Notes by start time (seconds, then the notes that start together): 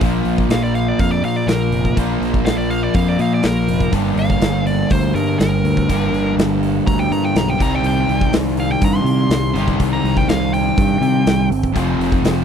0.00 A#1 A#2 F3 A#3 D4 F4, kick, open hi-hat
0.25 A#1, open hi-hat
0.38 kick
0.49 A#1 F5, snare, open hi-hat
0.63 D5
0.75 F5, open hi-hat
0.88 D5
0.99 F2 F5, kick, open hi-hat
1.12 D5
1.22 A#2 F5, open hi-hat
1.36 D5
1.47 A#1 A#4, snare, open hi-hat
1.71 F1, open hi-hat
1.85 kick
1.96 A#1 A#2 F3 A#3 D4 F4, kick, open hi-hat
2.20 A#1, snare, open hi-hat
2.34 kick
2.44 A#1 F5, snare, open hi-hat
2.58 D5
2.70 F5, open hi-hat
2.84 D5
2.94 F2 F5, kick, open hi-hat
3.08 D5
3.19 A#2 F5, open hi-hat
3.34 D5
3.43 A#1 A#4, snare, open hi-hat
3.68 F1, open hi-hat
3.80 kick
3.91 G1 G2 D3 G3 A#3 D4 G4, kick, open hi-hat
4.16 G1 F5, open hi-hat
4.30 kick
4.41 G1, snare, open hi-hat
4.67 D5, open hi-hat
4.90 D2 C5, kick, open hi-hat
5.14 G2 A#4, open hi-hat
5.39 G1 A#4, snare, open hi-hat
5.64 D2, open hi-hat
5.77 kick
5.88 G1 G2 D3 G3 A#3 D4 G4, kick, open hi-hat
6.13 G1, open hi-hat
6.37 G1, snare, open hi-hat
6.63 open hi-hat
6.87 D2 A#5, kick, open hi-hat
6.99 G5
7.11 G2 A#5, open hi-hat
7.25 G5
7.35 B1 A#5, snare, open hi-hat
7.49 G5
7.59 C2 C3 D#3 G3 C4 G4 A#5, kick, open hi-hat
7.76 G5
7.83 C2 G5, open hi-hat
8.08 C2, open hi-hat
8.21 kick
8.32 C2, snare, open hi-hat
8.57 F5, open hi-hat
8.72 G5
8.82 G2 A#5, kick, open hi-hat
8.96 C6
9.04 C3, open hi-hat
9.29 C2, snare, open hi-hat
9.53 G1 C3 D#3 G3 C4, open hi-hat
9.57 G4
9.68 kick
9.80 C2, kick, open hi-hat
9.93 A#5
10.04 C2, open hi-hat
10.17 G5, kick
10.28 C2 F5, snare, open hi-hat
10.54 G5, open hi-hat
10.78 G2, kick, open hi-hat
11.01 C3, open hi-hat
11.26 C2, snare, open hi-hat
11.50 G1, open hi-hat
11.63 kick
11.74 F1 F2 C3 F3 A3 C4 F4, kick, open hi-hat
11.98 F1, snare, open hi-hat
12.12 kick
12.22 F1, snare, open hi-hat